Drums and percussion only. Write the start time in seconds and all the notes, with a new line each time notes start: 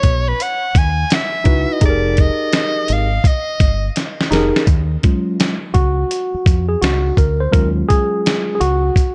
0.03 kick, closed hi-hat
0.40 closed hi-hat
0.75 kick, closed hi-hat
1.10 snare, closed hi-hat
1.45 kick, closed hi-hat
1.81 kick, closed hi-hat
2.17 kick, closed hi-hat
2.53 snare, closed hi-hat
2.88 closed hi-hat
3.24 kick, closed hi-hat
3.60 kick, closed hi-hat
3.96 snare, closed hi-hat
4.21 snare
4.32 snare, closed hi-hat
4.56 snare
4.67 kick, closed hi-hat
5.03 kick, closed hi-hat
5.40 snare, closed hi-hat
5.74 kick, closed hi-hat
6.11 closed hi-hat
6.46 kick, closed hi-hat
6.82 snare, closed hi-hat
7.17 kick, closed hi-hat
7.53 kick, closed hi-hat
7.90 kick, closed hi-hat
8.26 snare, closed hi-hat
8.61 closed hi-hat
8.96 kick, closed hi-hat